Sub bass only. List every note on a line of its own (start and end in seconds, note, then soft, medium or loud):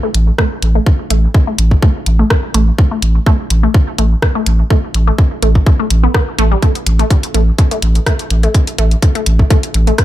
0.14 0.31 A1 medium
0.63 0.79 A1 loud
1.10 1.27 A1 medium
1.59 1.75 A1 medium
2.06 2.23 A1 medium
2.54 2.71 A1 medium
3.02 3.19 A1 loud
3.50 3.67 A1 loud
3.98 4.15 A1 medium
4.46 4.63 A1 loud
4.94 5.11 A1 loud
5.43 5.59 A1 medium
5.91 6.07 A1 medium
6.39 6.55 A1 loud
6.86 7.03 A1 loud
7.35 7.51 A1 loud
7.83 7.99 A1 medium
8.31 8.47 A1 medium
8.79 8.95 A1 loud
9.26 9.43 A1 medium
9.75 9.91 A1 medium